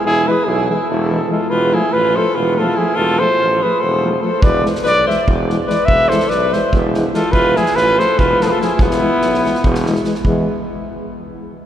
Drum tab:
SD |--------------|--------------|--------------|--ooo-o---o-o-|
BD |--------------|--------------|--------------|o-------o-----|

SD |--ooo-o---o-o-|--ooo-o---o-o-|-o--oooo-ooooo|--------------|
BD |o-------o-----|o-------o-----|o-------o-----|o-------------|